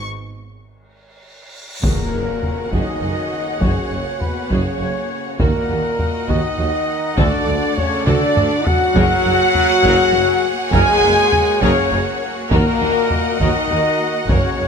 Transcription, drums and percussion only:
1.83 taiko loud
2.43 taiko low medium
2.73 taiko medium
3.62 taiko medium
4.21 taiko low medium
4.50 taiko medium
5.40 taiko loud
5.99 taiko low medium
6.29 taiko medium
7.18 taiko loud
7.78 taiko low medium
8.07 taiko mid medium
8.37 taiko low-mid medium
8.67 taiko low loud
8.96 taiko loud
9.55 taiko low medium
9.85 taiko medium
10.73 taiko loud
11.32 taiko low medium
11.62 taiko medium
12.51 taiko loud
13.10 taiko low medium
13.40 taiko medium
14.29 taiko loud

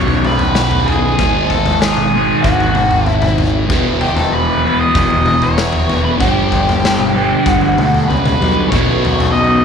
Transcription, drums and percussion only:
0.08 floor tom medium
0.25 mid tom medium
0.39 floor tom medium
0.55 snare medium
0.71 floor tom medium
0.88 floor tom medium
1.19 kick medium
1.19 floor tom medium
1.50 kick medium
1.50 floor tom medium
1.66 floor tom medium
1.82 snare medium
1.97 mid tom medium
2.44 kick medium
2.44 floor tom medium
2.60 floor tom medium
2.75 mid tom medium
2.91 floor tom medium
3.06 floor tom medium
3.22 floor tom medium
3.22 mid tom medium
3.38 floor tom medium
3.70 kick loud
3.70 floor tom medium
4.01 floor tom medium
4.17 floor tom medium
4.95 kick loud
4.95 floor tom medium
5.10 floor tom medium
5.26 mid tom medium
5.42 floor tom medium
5.58 snare medium
5.73 floor tom medium
5.89 floor tom medium
6.20 kick medium
6.20 floor tom medium
6.52 kick medium
6.52 floor tom medium
6.69 floor tom medium
6.85 snare medium
7.00 mid tom medium
7.46 kick loud
7.46 floor tom medium
7.61 floor tom medium
7.78 mid tom medium
7.94 floor tom medium
8.10 floor tom medium
8.26 floor tom medium
8.26 mid tom medium
8.42 floor tom medium
8.72 kick medium
8.72 floor tom medium
9.05 floor tom medium
9.20 floor tom medium

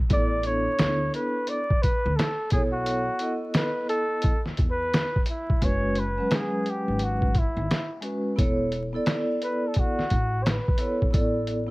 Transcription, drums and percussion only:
0.10 kick loud
0.10 closed hi-hat medium
0.43 closed hi-hat medium
0.79 snare loud
0.79 closed hi-hat medium
1.14 closed hi-hat medium
1.47 closed hi-hat medium
1.70 kick loud
1.83 kick medium
1.83 closed hi-hat medium
2.19 snare loud
2.19 closed hi-hat medium
2.50 kick loud
2.50 closed hi-hat medium
2.86 closed hi-hat loud
3.19 closed hi-hat medium
3.54 snare loud
3.54 closed hi-hat medium
3.89 closed hi-hat medium
4.22 kick loud
4.22 closed hi-hat medium
4.46 snare soft
4.57 kick medium
4.57 closed hi-hat medium
4.93 snare loud
4.93 closed hi-hat medium
5.16 kick medium
5.26 closed hi-hat medium
5.50 kick medium
5.62 kick medium
5.62 closed hi-hat medium
5.95 closed hi-hat medium
6.31 snare loud
6.31 closed hi-hat medium
6.66 closed hi-hat medium
6.99 closed hi-hat medium
7.22 kick medium
7.35 kick medium
7.35 closed hi-hat medium
7.71 snare loud
7.71 closed hi-hat medium
8.02 closed hi-hat medium
8.39 kick loud
8.39 closed hi-hat loud
8.72 closed hi-hat medium
9.06 snare loud
9.06 closed hi-hat medium
9.42 closed hi-hat medium
9.74 kick medium
9.74 closed hi-hat medium
9.99 snare soft
10.10 kick medium
10.10 closed hi-hat medium
10.46 snare medium
10.46 closed hi-hat medium
10.68 kick loud
10.78 closed hi-hat medium
11.02 kick medium
11.14 kick loud
11.14 closed hi-hat medium
11.47 closed hi-hat medium

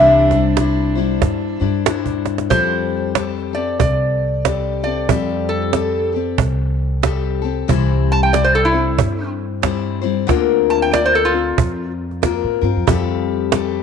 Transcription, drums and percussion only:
0.31 cajon bass medium
0.31 cajon slap soft
0.57 cajon slap medium
1.22 cajon bass medium
1.22 cajon slap soft
1.61 cajon slap soft
1.86 cajon slap loud
2.06 cajon bass medium
2.25 cajon slap medium
2.38 cajon slap medium
2.51 cajon bass medium
2.72 cajon slap soft
3.15 cajon slap medium
3.80 cajon bass loud
4.45 cajon bass medium
4.45 cajon slap medium
5.09 cajon bass loud
5.28 cajon slap soft
5.73 cajon slap medium
6.38 cajon bass loud
7.03 cajon bass medium
7.03 cajon slap medium
7.69 cajon bass medium
7.90 cajon slap soft
8.34 cajon slap loud
8.98 cajon bass loud
9.63 cajon bass medium
9.63 cajon slap medium
10.29 cajon bass loud
10.29 cajon slap soft
10.94 cajon slap loud
11.58 cajon bass loud
12.11 cajon slap soft
12.23 cajon bass medium
12.23 cajon slap medium
12.62 cajon slap soft
12.88 cajon bass loud
13.09 cajon slap soft
13.52 cajon slap loud

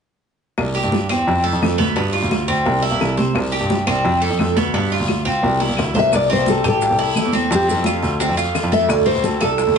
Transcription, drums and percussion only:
0.58 high bongo medium
0.58 high conga soft
0.58 long guiro medium
0.58 claves medium
0.76 high bongo soft
0.76 high conga soft
0.92 high bongo medium
0.92 high conga medium
0.92 short guiro medium
1.10 high bongo soft
1.10 high conga soft
1.10 short guiro medium
1.10 claves medium
1.28 high bongo medium
1.28 high conga soft
1.28 long guiro medium
1.45 high conga soft
1.62 high bongo soft
1.62 low bongo medium
1.62 high conga medium
1.62 short guiro medium
1.62 claves medium
1.80 high bongo soft
1.80 high conga medium
1.80 short guiro medium
1.97 high bongo medium
1.97 high conga soft
1.97 long guiro medium
2.14 high bongo soft
2.14 high conga soft
2.31 high bongo soft
2.31 high conga medium
2.31 short guiro medium
2.31 claves medium
2.49 high bongo soft
2.49 high conga soft
2.49 short guiro medium
2.66 high bongo medium
2.66 high conga soft
2.66 long guiro medium
2.84 high conga soft
3.00 high bongo soft
3.00 low bongo medium
3.00 high conga soft
3.00 short guiro medium
3.00 claves medium
3.18 high bongo soft
3.18 high conga medium
3.18 short guiro medium
3.35 high bongo medium
3.35 high conga soft
3.35 long guiro medium
3.35 claves medium
3.53 high bongo soft
3.53 high conga soft
3.70 high bongo medium
3.70 high conga medium
3.70 short guiro medium
3.87 high bongo soft
3.87 high conga soft
3.87 short guiro medium
3.87 claves medium
4.05 high bongo medium
4.05 high conga soft
4.05 long guiro medium
4.22 high conga soft
4.39 high bongo soft
4.39 low bongo medium
4.39 high conga medium
4.39 short guiro medium
4.39 claves medium
4.57 high bongo soft
4.57 high conga medium
4.57 short guiro medium
4.74 high bongo medium
4.74 high conga soft
4.74 long guiro medium
4.92 high bongo soft
4.92 high conga soft
5.08 high bongo medium
5.08 high conga medium
5.08 short guiro medium
5.08 claves medium
5.26 high bongo soft
5.26 high conga soft
5.26 short guiro medium
5.43 high bongo medium
5.43 high conga soft
5.43 long guiro medium
5.60 high bongo medium
5.60 high conga soft
5.77 low bongo medium
5.77 high conga soft
5.77 short guiro medium
5.77 claves medium
5.94 low bongo medium
5.94 high conga medium
5.94 short guiro medium
6.12 high bongo medium
6.12 high conga soft
6.12 long guiro medium
6.12 claves medium
6.12 maracas medium
6.29 high bongo soft
6.29 high conga soft
6.46 high bongo medium
6.46 high conga medium
6.46 short guiro medium
6.46 maracas medium
6.63 high bongo soft
6.63 high conga soft
6.63 short guiro medium
6.63 claves medium
6.63 maracas soft
6.81 high bongo medium
6.81 high conga soft
6.81 long guiro medium
6.81 maracas medium
6.98 high conga soft
7.15 high bongo soft
7.15 low bongo medium
7.15 high conga medium
7.15 short guiro medium
7.15 claves medium
7.15 maracas medium
7.33 high bongo soft
7.33 high conga medium
7.33 short guiro medium
7.33 maracas soft
7.50 high bongo medium
7.50 high conga soft
7.50 long guiro medium
7.50 maracas medium
7.68 high bongo soft
7.68 high conga soft
7.68 maracas medium
7.84 high bongo medium
7.84 high conga medium
7.84 short guiro medium
7.84 claves medium
7.84 maracas medium
8.02 high bongo soft
8.02 high conga soft
8.02 short guiro medium
8.02 maracas soft
8.20 high bongo medium
8.20 high conga soft
8.20 long guiro medium
8.20 maracas medium
8.37 high conga soft
8.37 maracas medium
8.55 high bongo soft
8.55 low bongo medium
8.55 high conga soft
8.55 short guiro medium
8.55 claves medium
8.55 maracas medium
8.72 high bongo soft
8.72 high conga medium
8.72 short guiro medium
8.72 maracas soft
8.89 high bongo medium
8.89 high conga soft
8.89 long guiro medium
8.89 claves medium
8.89 maracas medium
9.06 high bongo soft
9.06 high conga soft
9.24 high bongo medium
9.24 high conga medium
9.24 short guiro medium
9.24 maracas medium
9.41 high bongo soft
9.41 high conga soft
9.41 short guiro medium
9.41 claves medium
9.41 maracas soft
9.58 high bongo medium
9.58 high conga soft
9.58 long guiro medium
9.58 maracas medium

